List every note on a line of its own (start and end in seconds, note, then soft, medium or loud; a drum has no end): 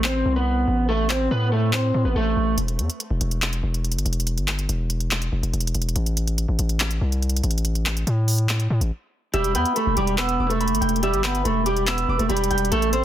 0.00 0.24 A1 loud
0.00 clap loud
0.04 0.34 C4 medium
0.04 0.34 C5 loud
0.25 0.66 C2 loud
0.36 0.86 B3 medium
0.36 0.86 B4 medium
0.68 1.28 A1 loud
0.89 1.07 A3 medium
0.89 1.06 A4 loud
1.10 1.28 C4 medium
1.10 1.28 C5 medium
1.10 clap loud
1.31 1.92 A2 loud
1.31 1.49 B3 medium
1.31 1.49 B4 medium
1.52 1.70 A3 medium
1.52 1.70 A4 medium
1.73 2.03 C4 medium
1.73 2.03 C5 medium
1.73 clap loud
1.94 2.04 A2 loud
2.05 2.15 A1 loud
2.05 2.14 B3 medium
2.05 2.14 B4 medium
2.15 2.36 A1 loud
2.15 2.56 A3 medium
2.15 2.55 A4 loud
2.37 2.57 A1 loud
2.58 2.80 E1 loud
2.58 closed hi-hat medium
2.68 closed hi-hat soft
2.79 2.89 E2 loud
2.79 closed hi-hat medium
2.90 closed hi-hat medium
3.00 closed hi-hat medium
3.10 3.20 E1 loud
3.21 3.62 E1 loud
3.21 closed hi-hat medium
3.31 closed hi-hat soft
3.42 clap loud
3.42 closed hi-hat medium
3.53 closed hi-hat medium
3.63 3.96 E1 loud
3.74 closed hi-hat soft
3.85 closed hi-hat soft
3.92 4.05 G1 loud
3.92 closed hi-hat medium
3.98 closed hi-hat medium
4.05 4.39 E1 loud
4.05 closed hi-hat medium
4.13 closed hi-hat medium
4.20 closed hi-hat medium
4.27 closed hi-hat medium
4.37 4.67 G1 loud
4.37 closed hi-hat soft
4.48 clap loud
4.48 closed hi-hat medium
4.59 closed hi-hat medium
4.69 5.30 E1 loud
4.69 closed hi-hat medium
4.90 closed hi-hat medium
5.00 closed hi-hat soft
5.11 clap loud
5.11 closed hi-hat medium
5.22 closed hi-hat medium
5.32 5.42 E1 loud
5.43 5.53 E1 loud
5.43 closed hi-hat soft
5.53 5.74 E1 loud
5.53 closed hi-hat soft
5.60 closed hi-hat medium
5.67 closed hi-hat medium
5.75 5.95 E1 loud
5.75 closed hi-hat medium
5.82 closed hi-hat medium
5.89 closed hi-hat medium
5.96 6.46 A1 loud
5.96 closed hi-hat medium
6.06 closed hi-hat soft
6.17 closed hi-hat medium
6.27 closed hi-hat medium
6.38 closed hi-hat medium
6.48 6.58 A1 loud
6.59 7.00 A1 loud
6.59 closed hi-hat medium
6.69 closed hi-hat soft
6.80 clap loud
6.80 closed hi-hat medium
6.91 closed hi-hat medium
7.01 7.42 C2 loud
7.12 closed hi-hat soft
7.22 closed hi-hat soft
7.29 closed hi-hat medium
7.37 closed hi-hat medium
7.43 8.04 A1 loud
7.43 closed hi-hat medium
7.51 closed hi-hat medium
7.58 closed hi-hat medium
7.65 closed hi-hat medium
7.75 closed hi-hat soft
7.86 clap loud
7.86 closed hi-hat medium
7.97 closed hi-hat medium
8.07 8.68 A2 loud
8.07 closed hi-hat medium
8.28 open hi-hat medium
8.38 closed hi-hat soft
8.49 clap loud
8.49 closed hi-hat medium
8.60 closed hi-hat medium
8.70 8.80 A2 loud
8.81 8.91 A1 loud
8.81 closed hi-hat soft
9.34 9.56 E1 loud
9.34 9.52 G3 medium
9.34 9.51 G4 loud
9.34 11.03 E5 medium
9.34 closed hi-hat medium
9.44 closed hi-hat soft
9.55 9.65 E2 loud
9.55 9.73 B3 medium
9.55 9.73 B4 medium
9.55 10.81 G5 medium
9.55 closed hi-hat medium
9.65 closed hi-hat medium
9.76 9.94 A3 medium
9.76 9.94 A4 medium
9.76 10.60 B5 medium
9.76 closed hi-hat medium
9.87 9.97 E1 loud
9.97 10.38 E1 loud
9.97 10.15 G3 medium
9.97 10.15 G4 medium
9.97 10.40 D6 medium
9.97 closed hi-hat medium
10.07 closed hi-hat soft
10.18 10.48 B3 medium
10.18 10.48 B4 medium
10.18 11.32 E6 loud
10.18 clap loud
10.18 closed hi-hat medium
10.29 closed hi-hat medium
10.39 10.72 E1 loud
10.39 11.62 D6 medium
10.50 11.00 A3 medium
10.50 10.99 A4 medium
10.50 closed hi-hat soft
10.61 11.45 B5 medium
10.61 closed hi-hat soft
10.68 10.81 G1 loud
10.68 closed hi-hat medium
10.75 closed hi-hat medium
10.81 11.15 E1 loud
10.81 11.24 G5 medium
10.81 closed hi-hat medium
10.89 closed hi-hat medium
10.96 closed hi-hat medium
11.03 11.21 G3 medium
11.03 11.20 G4 loud
11.03 12.76 E5 medium
11.03 closed hi-hat medium
11.13 11.43 G1 loud
11.13 closed hi-hat soft
11.24 11.42 B3 medium
11.24 11.42 B4 medium
11.24 12.50 G5 medium
11.24 clap loud
11.24 closed hi-hat medium
11.35 closed hi-hat medium
11.45 12.06 E1 loud
11.45 11.63 A3 medium
11.45 11.63 A4 medium
11.45 12.29 B5 medium
11.45 closed hi-hat medium
11.66 11.84 G3 medium
11.66 11.84 G4 medium
11.66 12.09 D6 medium
11.66 closed hi-hat medium
11.77 closed hi-hat soft
11.87 12.17 B3 medium
11.87 12.17 B4 medium
11.87 13.01 E6 loud
11.87 clap loud
11.87 closed hi-hat medium
11.98 closed hi-hat medium
12.08 12.18 E1 loud
12.08 13.04 D6 medium
12.19 12.29 E1 loud
12.19 12.28 A3 medium
12.19 12.28 A4 medium
12.19 closed hi-hat soft
12.29 12.50 E1 loud
12.29 12.70 G3 medium
12.29 12.69 G4 medium
12.29 13.04 B5 medium
12.29 closed hi-hat soft
12.37 closed hi-hat medium
12.44 closed hi-hat medium
12.50 12.71 E1 loud
12.50 13.04 G5 medium
12.50 closed hi-hat medium
12.58 closed hi-hat medium
12.65 closed hi-hat medium
12.72 13.04 A1 loud
12.72 12.90 A3 medium
12.72 12.89 A4 loud
12.72 13.04 A4 medium
12.72 closed hi-hat medium
12.82 closed hi-hat soft
12.93 13.04 C4 medium
12.93 13.04 C5 medium
12.93 13.04 E5 medium
12.93 closed hi-hat medium